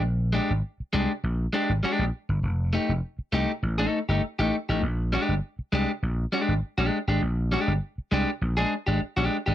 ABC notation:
X:1
M:4/4
L:1/16
Q:1/4=100
K:Bb
V:1 name="Clean electric guitar"
z2 [_A,DG] z3 [A,DG] z3 [A,DG] z [A,DG] z3 | z2 [A,EG] z3 [A,EG] z2 [A,EA] z [A,EG] z [A,EG] z [A,EG] | z2 [_A,DG] z3 [A,DG] z3 [A,DG] z2 [A,DG] z [A,DG] | z2 [_A,DG] z3 [A,DG] z2 [A,D_A] z [A,DG] z [A,DG] z [A,DG] |]
V:2 name="Slap bass" clef=bass
B,,,3 _A,,, z2 C,, z B,,,2 z A,,, z B,,, z G,,, | F,,,3 F,,, z2 C,, z A,,,2 z G,,, z A,,, z A,,, | B,,,3 G,,, z2 C,, z B,,,2 z _A,,, z B,,, z A,,, | B,,,3 G,,, z2 C,, z B,,,2 z _A,,, z B,,, z A,,, |]